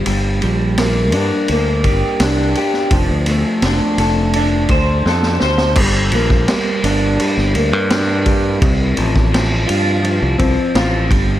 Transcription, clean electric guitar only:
X:1
M:4/4
L:1/8
Q:1/4=84
K:Gm
V:1 name="Clean electric guitar"
G, G, B, D B, G D G | F, A, D A D c A c | G, B, G, D G, B, D G, | C, F, F, F F, C F G, |]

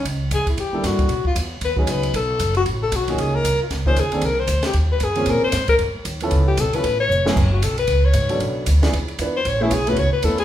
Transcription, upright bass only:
X:1
M:4/4
L:1/8
Q:"Swing" 1/4=230
K:Db
V:1 name="Upright bass" clef=bass
D,,2 F,,2 =E,, z =G,,2 | =B,, z =E,,2 ^D,,2 ^C,,2 | =B,,,2 ^F,,,2 =A,,,2 B,,,2 | D,,2 C,, z D,,2 E,, z |
C,,2 =D,,2 E,,2 G,,2 | B,, z A,,2 F,, z E,,2 | D,,2 _C,, z =A,,,2 F,,,2 | [K:F#m] F,,,2 B,,,2 C,,2 G,,2 |
B,,,2 D,,2 E,,2 ^E,,2 | A,,,2 B,,,2 C,, z E,,2 |]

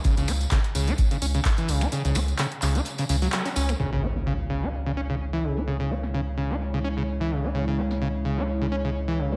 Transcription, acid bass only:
X:1
M:4/4
L:1/16
Q:"Swing 16ths" 1/4=128
K:C#m
V:1 name="Acid bass" clef=bass
C, C, E z C, z C, E z C, C C, z E, C, E | C, C, E z C, z C, E z C, C, F, F, C C G, | C, C, E z C, z C, E z C, C C, z E, C, E | C, C, E z C, z C, E z C, C C, z E, C, E |
C, C, E z C, z C, E z C, C C, z E, C, E |]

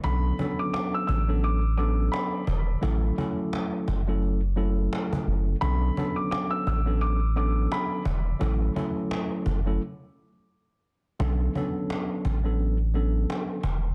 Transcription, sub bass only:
X:1
M:4/4
L:1/8
Q:"Swing 16ths" 1/4=86
K:Bm
V:1 name="Sub bass" clef=bass
B,,, z2 A,,,3 z E,,, | A,,, z2 F,,,3 z F,,, | B,,, z2 A,,,3 z E,,, | A,,, z2 F,,, z4 |
B,,, z2 A,,,3 z E,,, |]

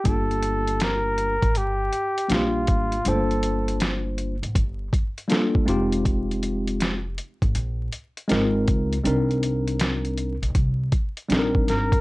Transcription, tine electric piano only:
X:1
M:4/4
L:1/8
Q:"Swing 16ths" 1/4=80
K:Gphr
V:1 name="Tine electric piano"
[G,B,DFG]3 z3 [G,B,DFG]2 | [G,=A,B,DFc]3 z3 [G,B,DF=A] [_A,CEFG]- | [A,CEFG]2 z4 [A,CEFB]2 | [G,CDEB]3 z3 [G,CDE=AB]2 |]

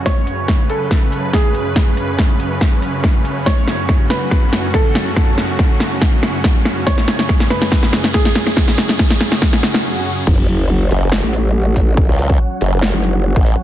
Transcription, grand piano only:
X:1
M:4/4
L:1/8
Q:1/4=141
K:F#m
V:1 name="Grand piano"
c3 A3 G2- | G8 | c3 B3 A2- | A8 |
c3 B3 G2- | G6 z2 | z8 | z8 |]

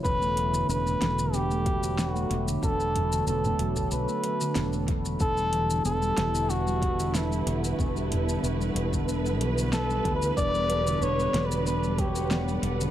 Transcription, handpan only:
X:1
M:4/4
L:1/16
Q:"Swing 16ths" 1/4=93
K:Em
V:1 name="Handpan" clef=bass
B, A, F, D, B, A, F, D, B, A, F, D, B, A, F, D, | B, A, F, D, B, A, F, D, B, A, F, D, B, A, F, D, | B, G, E, D, B, G, E, D, B, G, E, D, B, G, E, D, | B, G, E, D, B, G, E, D, B, G, E, D, B, G, E, D, |
B, G, F, D, B, G, F, D, B, G, F, D, B, G, F, D, |]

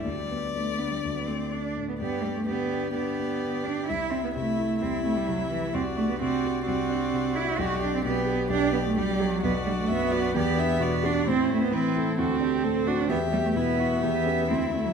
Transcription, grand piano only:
X:1
M:4/4
L:1/8
Q:1/4=129
K:G
V:1 name="Grand piano"
D,, B, D D, D,, A, D A,, | G,, B, D, D D, B, D, D | C,, C C, E C,, C C, E | C,, D C, F C,, D C, F |
B,,, D B,, G B,,, D B,, G | B,,, D F,, F E,, D B,, G | A,, C E, E D,, D A,, F | E,, B, B,, E E,, [^CG] D,, [DF] |]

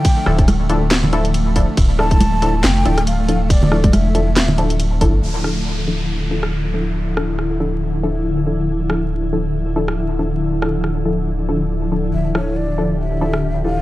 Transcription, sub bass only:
X:1
M:4/4
L:1/8
Q:"Swing 16ths" 1/4=139
K:Dm
V:1 name="Sub bass" clef=bass
z D,,,6 z | D,,,4 F,,, D,,,3- | D,,,2 E,,,2 D,,,3 G,,, | z8 |
z8 | z8 | z8 | D,,,8 |]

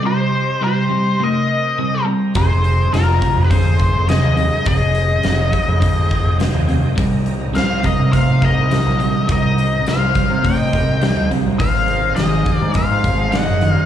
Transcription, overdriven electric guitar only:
X:1
M:4/4
L:1/8
Q:1/4=104
K:Cm
V:1 name="Overdriven electric guitar" clef=bass
[C,G,]2 [C,G,] [C,G,] [C,=A,]2 [C,G,] [C,G,] | [F,,C,]2 [F,,C,] [F,,C,] [F,,D,]2 [F,,C,] [F,,C,] | [F,,C,]2 [F,,C,] [F,,C,] [F,,D,]2 [F,,C,] [F,,C,] | [C,G,]2 [C,G,] [C,G,] [C,=A,]2 [C,G,] [C,G,] |
[C,G,]2 [C,G,] [C,G,] [C,=A,]2 [C,G,] [C,G,] | [A,,E,]2 [A,,E,] [A,,E,] [A,,F,]2 [A,,E,] [A,,E,] |]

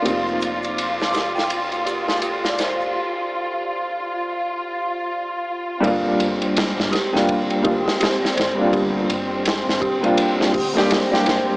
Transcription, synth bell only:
X:1
M:4/4
L:1/16
Q:"Swing 16ths" 1/4=83
K:Gm
V:1 name="Synth bell"
G4 z2 G g z2 G G G d c z | z16 | G4 z2 G g z2 G G G d c z | G4 z2 G g z2 G G G d c z |]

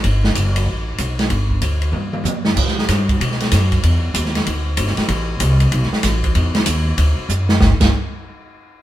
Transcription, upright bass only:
X:1
M:4/4
L:1/8
Q:"Swing" 1/4=190
K:G
V:1 name="Upright bass" clef=bass
G,,,2 F,,,2 A,,,2 B,,,2 | G,,,2 D,,2 G,,2 F,,2 | A,,2 G,,2 B,,2 F,,2 | E,,2 _E,,2 D,,2 G,,, z |
A,,,2 C,,2 B,,, z A,,,2 | E,,2 _E,,2 D,, z F,,2 | G,,, G,,, z6 |]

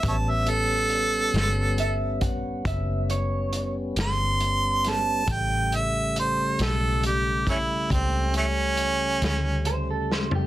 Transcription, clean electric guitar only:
X:1
M:12/8
L:1/16
Q:3/8=46
K:Amix
V:1 name="Clean electric guitar"
z8 e2 f2 e2 c3 z6 z | z16 z4 =c A c G |]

